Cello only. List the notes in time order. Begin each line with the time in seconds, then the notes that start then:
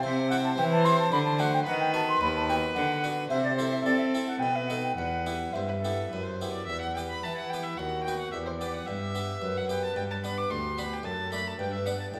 0.04 C3
0.58 E3
1.12 D3
1.67 D#3
2.22 D#2
2.76 D3
3.30 C3
3.85 C4
4.40 B2
4.97 E2
5.53 G2
6.10 F#2
6.67 E2
7.23 E3
7.78 D#2
8.33 E2
8.87 G2
9.41 F#2
9.96 G2
10.50 D2
11.05 F#2
11.59 G2
12.13 A2